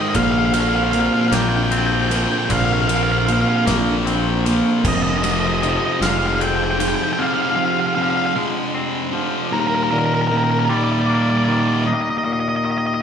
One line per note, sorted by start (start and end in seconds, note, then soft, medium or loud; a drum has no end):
0.00 0.13 G#2 medium
0.00 0.13 D#3 medium
0.00 0.12 G#3 medium
0.00 0.14 G#3 loud
0.00 0.16 G#3 medium
0.00 0.17 C4 medium
0.00 0.14 F4 medium
0.00 0.12 C5 medium
0.00 0.09 D#5 medium
0.09 0.15 D#5 medium
0.14 1.08 A#1 loud
0.14 0.54 A#2 loud
0.14 0.55 F3 loud
0.14 0.55 A#3 loud
0.14 4.81 C4 medium
0.14 4.81 D4 medium
0.14 4.81 A#4 medium
0.14 0.23 F5 loud
0.14 kick loud
0.14 ride loud
0.23 0.31 F5 medium
0.32 0.38 F5 medium
0.39 0.46 F5 medium
0.46 0.53 F5 medium
0.53 0.93 A#2 medium
0.53 0.94 F3 medium
0.53 0.94 A#3 loud
0.53 0.60 F5 medium
0.53 ride medium
0.60 0.68 F5 loud
0.69 0.76 F5 medium
0.76 0.83 F5 loud
0.84 0.91 F5 medium
0.91 1.31 A#2 medium
0.91 1.32 F3 loud
0.91 1.32 A#3 loud
0.91 0.99 F5 medium
0.91 ride medium
1.00 1.06 F5 medium
1.06 1.14 F5 medium
1.14 1.21 F5 medium
1.21 1.28 F5 medium
1.28 2.25 A#1 loud
1.28 1.36 F5 medium
1.32 2.09 A#2 loud
1.32 2.10 F3 loud
1.32 2.10 A#3 loud
1.32 1.41 G5 loud
1.32 snare loud
1.32 ride loud
1.42 1.49 G5 medium
1.49 1.56 G5 medium
1.56 1.63 G5 medium
1.63 1.71 G5 medium
1.71 3.69 C4 medium
1.71 1.78 G5 medium
1.71 ride medium
1.79 1.86 G5 medium
1.86 1.93 G5 medium
1.93 2.01 G5 medium
2.02 2.08 G5 medium
2.08 2.48 A#2 medium
2.08 2.50 F3 medium
2.08 2.50 A#3 loud
2.08 2.16 G5 medium
2.08 ride medium
2.16 2.23 G5 medium
2.24 2.31 G5 medium
2.32 2.38 G5 medium
2.39 2.45 G5 medium
2.46 2.88 A#2 medium
2.46 2.53 G5 medium
2.50 3.43 A#1 loud
2.50 2.89 F3 loud
2.50 2.89 A#3 loud
2.50 2.57 F5 medium
2.50 kick loud
2.50 ride loud
2.57 2.65 F5 medium
2.65 2.72 F5 medium
2.73 2.80 F5 medium
2.81 2.88 F5 medium
2.88 3.27 A#2 medium
2.88 3.28 F3 medium
2.88 3.28 A#3 medium
2.88 2.96 F5 medium
2.88 ride loud
2.96 3.03 F5 medium
3.03 3.10 F5 medium
3.12 3.18 F5 medium
3.18 3.26 F5 medium
3.26 3.66 A#2 medium
3.26 3.67 F3 loud
3.26 3.67 A#3 loud
3.26 3.32 F5 medium
3.26 ride medium
3.33 3.40 F5 medium
3.41 3.49 F5 medium
3.49 3.56 F5 medium
3.57 3.64 F5 medium
3.67 4.61 A#1 medium
3.67 4.45 A#2 medium
3.67 4.47 F3 medium
3.67 4.47 A#3 loud
3.67 kick medium
3.67 snare loud
3.67 ride loud
4.05 6.41 C4 medium
4.05 ride medium
4.46 4.83 A#2 medium
4.46 4.86 F3 medium
4.46 4.83 A#3 medium
4.46 ride medium
4.84 5.78 F1 loud
4.84 5.23 F2 loud
4.84 5.22 C3 loud
4.84 9.50 F3 medium
4.84 5.24 F3 loud
4.84 7.17 D#4 medium
4.84 9.50 G#4 medium
4.84 4.95 D#5 medium
4.84 kick loud
4.84 crash loud
4.95 5.02 D#5 medium
5.03 5.10 D#5 medium
5.10 5.17 D#5 medium
5.18 5.24 D#5 medium
5.23 5.62 F2 medium
5.23 5.63 C3 medium
5.23 5.63 F3 loud
5.23 5.32 D#5 medium
5.23 ride medium
5.32 5.39 D#5 medium
5.40 5.46 D#5 medium
5.47 5.54 D#5 medium
5.55 5.62 D#5 medium
5.62 5.99 F2 medium
5.62 6.00 C3 medium
5.62 6.00 F3 medium
5.62 5.69 D#5 medium
5.62 ride medium
5.69 5.76 D#5 medium
5.77 5.84 D#5 medium
5.85 5.92 D#5 medium
5.92 6.00 D#5 medium
6.00 6.94 F1 medium
6.00 6.77 F2 loud
6.00 6.78 C3 loud
6.00 6.79 F3 loud
6.00 7.97 G#3 medium
6.00 6.10 F5 medium
6.00 snare loud
6.00 ride loud
6.11 6.18 F5 medium
6.19 6.27 F5 medium
6.27 6.35 F5 medium
6.36 6.44 F5 medium
6.40 8.37 C4 medium
6.40 6.47 G5 medium
6.40 ride medium
6.47 6.55 G5 medium
6.56 6.63 G5 medium
6.63 6.71 G5 medium
6.71 6.79 G5 medium
6.78 7.17 F2 medium
6.78 7.18 C3 medium
6.78 7.18 F3 medium
6.78 6.88 G5 loud
6.78 ride medium
6.88 6.95 G5 medium
6.96 7.03 G5 loud
7.03 7.11 G5 medium
7.13 7.21 G5 medium
7.18 7.56 F2 medium
7.18 7.57 C3 loud
7.18 7.57 F3 loud
7.18 9.51 D4 medium
7.18 7.26 F5 loud
7.26 7.34 F5 medium
7.34 7.42 F5 medium
7.42 7.49 F5 medium
7.50 7.55 F5 medium
7.56 7.95 F2 medium
7.56 7.95 C3 medium
7.56 7.96 F3 medium
7.56 7.63 F5 medium
7.65 7.71 F5 medium
7.72 7.79 F5 medium
7.80 7.87 F5 medium
7.87 7.95 F5 medium
7.95 8.34 F2 medium
7.95 8.35 C3 medium
7.95 8.36 F3 medium
7.95 8.02 F5 medium
8.03 8.10 F5 medium
8.10 8.16 F5 medium
8.17 8.24 F5 medium
8.26 8.33 F5 medium
8.35 9.11 F2 loud
8.35 9.11 C3 loud
8.35 9.12 F3 loud
8.35 9.53 G#3 medium
8.74 9.53 C4 medium
9.12 9.50 F2 medium
9.12 9.50 C3 loud
9.12 9.50 F3 medium
9.52 9.91 D#2 loud
9.52 9.92 A#2 loud
9.52 9.92 D#3 loud
9.52 9.59 A#4 loud
9.60 9.67 A#4 medium
9.67 9.75 A#4 medium
9.75 9.83 A#4 medium
9.83 9.90 A#4 medium
9.91 10.30 D#2 medium
9.91 10.30 A#2 loud
9.91 10.31 D#3 loud
9.91 9.98 A#4 medium
9.98 10.05 A#4 medium
10.06 10.13 A#4 medium
10.14 10.21 A#4 medium
10.22 10.27 A#4 medium
10.27 10.69 D#2 medium
10.27 10.35 A#4 medium
10.32 10.69 A#2 medium
10.32 10.70 D#3 medium
10.37 10.44 A#4 medium
10.44 10.50 A#4 medium
10.51 10.58 A#4 medium
10.59 10.65 A#4 medium
10.65 12.65 G3 medium
10.65 10.73 A#4 medium
10.65 10.77 D5 loud
10.70 11.46 D#2 loud
10.70 11.46 A#2 loud
10.70 11.47 D#3 loud
10.77 10.83 D5 medium
10.84 10.91 D5 medium
10.92 10.99 D5 medium
11.00 11.06 D5 medium
11.06 13.02 A#3 medium
11.06 11.14 D5 medium
11.14 11.22 D5 medium
11.22 11.30 D5 medium
11.30 11.37 D5 medium
11.37 11.45 D5 medium
11.45 11.85 D#2 medium
11.45 11.85 A#2 loud
11.45 11.85 D#3 loud
11.45 11.52 D5 medium
11.52 11.60 D5 medium
11.60 11.67 D5 medium
11.68 11.74 D5 medium
11.74 11.82 D5 medium
11.83 13.02 D#2 medium
11.83 11.86 D5 medium
11.83 11.94 D#5 loud
11.94 12.01 D#5 medium
12.01 12.09 D#5 medium
12.10 12.18 D#5 medium
12.18 12.24 D#5 medium
12.25 13.02 A#2 medium
12.25 12.32 D#5 medium
12.33 12.40 D#5 loud
12.40 12.48 D#5 medium
12.49 12.56 D#5 medium
12.56 12.64 D#5 medium
12.65 13.02 D#3 medium
12.65 12.71 D#5 loud
12.71 12.77 D#5 medium
12.78 12.86 D#5 medium
12.87 12.94 D#5 medium
12.94 13.01 D#5 loud